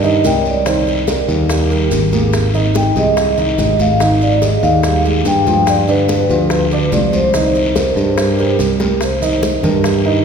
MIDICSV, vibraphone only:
0, 0, Header, 1, 2, 480
1, 0, Start_track
1, 0, Key_signature, -3, "minor"
1, 0, Tempo, 417537
1, 760, Time_signature, 4, 2, 24, 8
1, 11781, End_track
2, 0, Start_track
2, 0, Title_t, "Vibraphone"
2, 0, Program_c, 0, 11
2, 64, Note_on_c, 0, 75, 83
2, 299, Note_off_c, 0, 75, 0
2, 303, Note_on_c, 0, 79, 89
2, 440, Note_off_c, 0, 79, 0
2, 453, Note_on_c, 0, 73, 54
2, 527, Note_off_c, 0, 73, 0
2, 547, Note_on_c, 0, 74, 77
2, 1448, Note_off_c, 0, 74, 0
2, 3183, Note_on_c, 0, 79, 94
2, 3287, Note_off_c, 0, 79, 0
2, 3430, Note_on_c, 0, 75, 94
2, 4381, Note_on_c, 0, 77, 99
2, 4405, Note_off_c, 0, 75, 0
2, 4849, Note_on_c, 0, 74, 88
2, 4866, Note_off_c, 0, 77, 0
2, 5093, Note_off_c, 0, 74, 0
2, 5098, Note_on_c, 0, 75, 90
2, 5203, Note_off_c, 0, 75, 0
2, 5328, Note_on_c, 0, 77, 98
2, 5772, Note_off_c, 0, 77, 0
2, 6061, Note_on_c, 0, 79, 101
2, 6541, Note_on_c, 0, 74, 86
2, 6547, Note_off_c, 0, 79, 0
2, 6645, Note_off_c, 0, 74, 0
2, 6780, Note_on_c, 0, 71, 83
2, 7236, Note_off_c, 0, 71, 0
2, 7249, Note_on_c, 0, 71, 85
2, 7920, Note_off_c, 0, 71, 0
2, 7968, Note_on_c, 0, 74, 92
2, 8189, Note_off_c, 0, 74, 0
2, 8207, Note_on_c, 0, 72, 82
2, 9836, Note_off_c, 0, 72, 0
2, 10387, Note_on_c, 0, 72, 69
2, 11045, Note_off_c, 0, 72, 0
2, 11095, Note_on_c, 0, 70, 80
2, 11319, Note_off_c, 0, 70, 0
2, 11781, End_track
0, 0, End_of_file